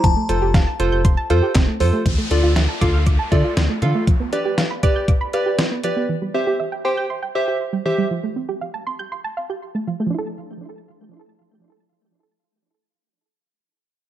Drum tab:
HH |xxxxxxxo|xxxxxxxx|xxxxxxxx|--------|
CP |------x-|--------|--------|--------|
SD |--o---o-|--o---o-|--o---o-|--------|
BD |o-o-o-o-|o--ooo--|o--oo---|--------|

HH |--------|--------|--------|
CP |--------|--------|--------|
SD |--------|--------|--------|
BD |--------|--------|--------|